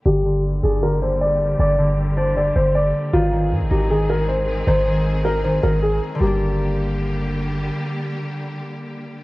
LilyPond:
<<
  \new Staff \with { instrumentName = "Grand piano" } { \time 4/4 \key g \phrygian \tempo 4 = 156 g'4 r8 aes'8 bes'8 c''8 d''4 | d''4 r8 c''8 d''8 c''8 d''4 | f'4 r8 g'8 aes'8 bes'8 c''4 | c''4 r8 bes'8 c''8 bes'8 aes'8 r8 |
g'2. r4 | r1 | }
  \new Staff \with { instrumentName = "String section" } { \time 4/4 \key g \phrygian <d g bes g'>1~ | <d g bes g'>1 | <ees aes c' aes'>1~ | <ees aes c' aes'>1 |
<d g bes g'>1~ | <d g bes g'>1 | }
  \new Staff \with { instrumentName = "Harp" } { \clef bass \time 4/4 \key g \phrygian d8 d4 d'8 d8 d4. | d8 d4 d'8 d8 d4. | ees8 ees4 ees'8 ees8 ees4. | ees8 ees4 ees'8 ees8 ees4. |
<d g bes d'>1~ | <d g bes d'>1 | }
  \new Staff \with { instrumentName = "808-style bass" } { \clef bass \time 4/4 \key g \phrygian g,,4. g,,2~ g,,8 | g,,2~ g,,8 g,,4 r8 | aes,,4 aes,16 aes,,16 aes,,2~ aes,,8 | aes,,2~ aes,,8 aes,,4 r8 |
g,,1 | r1 | }
>>